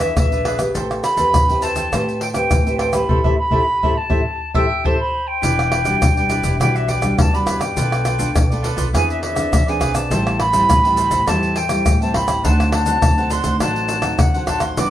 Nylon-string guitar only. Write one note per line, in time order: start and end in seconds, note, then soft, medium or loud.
0.00 0.14 E3 medium
0.00 0.26 D4 medium
0.00 0.26 G#4 medium
0.00 0.26 B4 medium
0.32 0.56 D4 medium
0.32 0.56 G#4 medium
0.32 0.57 B4 medium
0.59 1.14 C4 medium
0.59 1.14 G4 medium
0.59 1.14 B4 medium
0.76 1.31 A3 soft
1.18 1.43 C4 medium
1.18 1.43 G4 medium
1.18 1.43 B4 medium
1.34 1.90 E3 soft
1.49 1.88 C4 medium
1.49 1.88 G4 medium
1.49 1.89 B4 medium
1.93 2.48 A3 medium
1.93 2.20 C4 medium
1.93 2.20 G4 medium
1.93 2.21 B4 medium
2.34 2.60 C4 medium
2.34 2.60 G4 medium
2.34 2.60 B4 medium
2.51 3.07 E3 medium
2.67 2.91 C4 medium
2.67 2.91 G4 medium
2.67 2.91 B4 medium
2.93 3.04 C4 medium
2.93 3.04 G4 medium
2.93 3.04 B4 medium
3.10 3.19 E4 medium
3.10 3.19 G4 medium
3.10 3.19 A4 medium
3.25 3.34 E4 medium
3.25 3.34 G4 medium
3.25 3.34 A4 medium
3.52 3.62 E4 medium
3.52 3.62 G4 medium
3.52 3.62 A4 medium
3.84 3.93 E4 medium
3.84 3.93 G4 medium
3.84 3.93 A4 medium
4.10 4.20 E4 medium
4.10 4.20 G4 medium
4.10 4.20 A4 medium
4.55 4.65 E4 medium
4.55 4.65 G4 medium
4.55 4.65 A4 medium
4.85 4.95 E4 medium
4.85 4.95 G4 medium
4.85 4.95 A4 loud
5.44 5.99 E3 medium
5.86 6.11 G3 medium
5.86 6.11 D4 medium
5.86 6.12 F#4 medium
6.03 6.58 B2 medium
6.18 6.56 G3 medium
6.18 6.57 D4 medium
6.61 7.16 E3 medium
6.61 7.00 G3 medium
6.61 7.00 D4 medium
6.61 7.01 F#4 medium
7.02 7.28 G3 medium
7.02 7.28 D4 medium
7.02 7.28 F#4 medium
7.19 7.75 B2 medium
7.35 7.73 G3 medium
7.35 7.73 D4 medium
7.35 7.74 F#4 medium
7.78 8.33 B2 medium
7.78 8.17 A3 medium
7.78 8.17 D4 medium
7.78 8.17 F4 medium
8.20 8.45 A3 medium
8.20 8.45 D4 medium
8.20 8.45 F4 medium
8.36 8.91 B2 medium
8.52 8.90 A3 medium
8.52 8.90 D4 medium
8.52 8.90 F4 medium
8.94 9.50 E3 medium
8.94 9.33 C4 medium
8.94 9.34 D4 medium
8.94 9.34 G#4 medium
9.36 9.62 C4 medium
9.36 9.62 D4 medium
9.36 9.62 G#4 medium
9.68 10.07 C4 medium
9.68 10.07 D4 medium
9.68 10.07 G#4 medium
10.11 10.67 A2 medium
10.11 10.38 G3 medium
10.11 10.39 C4 medium
10.11 10.39 E4 medium
10.53 10.78 G3 medium
10.53 10.79 C4 medium
10.53 10.79 E4 medium
10.70 11.25 E3 medium
10.85 11.24 G3 medium
10.85 11.24 C4 medium
10.85 11.24 E4 medium
11.28 11.83 A2 medium
11.28 11.55 G3 medium
11.28 11.56 C4 medium
11.28 11.56 E4 medium
11.70 11.95 G3 medium
11.70 11.95 C4 medium
11.70 11.95 E4 medium
11.86 12.41 E3 medium
12.02 12.40 G3 medium
12.02 12.40 C4 medium
12.02 12.41 E4 medium
12.44 13.00 D3 medium
12.44 12.71 F#3 medium
12.44 12.72 C4 medium
12.44 12.72 D#4 medium
12.86 13.11 F#3 medium
12.86 13.12 C4 medium
12.86 13.12 D#4 medium
13.02 13.58 A2 medium
13.18 13.56 F#3 medium
13.18 13.57 C4 medium
13.18 13.57 D#4 medium
13.61 14.16 D3 medium
13.61 14.00 F#3 medium
13.61 14.00 C4 medium
13.61 14.00 D#4 medium
14.03 14.28 F#3 medium
14.03 14.28 C4 medium
14.03 14.28 D#4 medium
14.19 14.75 A2 medium
14.35 14.73 F#3 medium
14.35 14.73 C4 medium
14.35 14.74 D#4 medium
14.77 14.90 G2 medium
14.77 14.90 F#3 medium
14.77 14.90 B3 medium
14.77 14.90 D4 medium